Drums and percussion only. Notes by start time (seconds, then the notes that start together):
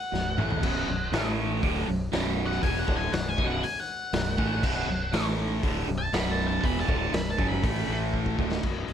0.14 snare
0.38 mid tom
0.50 floor tom
0.63 kick, crash
1.13 snare, open hi-hat
1.63 kick, open hi-hat
2.13 snare, open hi-hat
2.51 snare
2.63 kick, open hi-hat
2.88 kick
3.13 snare, open hi-hat
3.38 kick
3.63 open hi-hat
4.13 snare, open hi-hat
4.38 kick
4.63 kick, crash
5.13 snare, open hi-hat
5.63 kick, open hi-hat
6.13 snare, open hi-hat
6.64 kick, open hi-hat
6.89 kick
7.14 snare, open hi-hat
7.39 kick
7.63 kick, open hi-hat
8.14 kick
8.26 kick
8.39 kick
8.52 snare
8.63 kick, crash
8.88 open hi-hat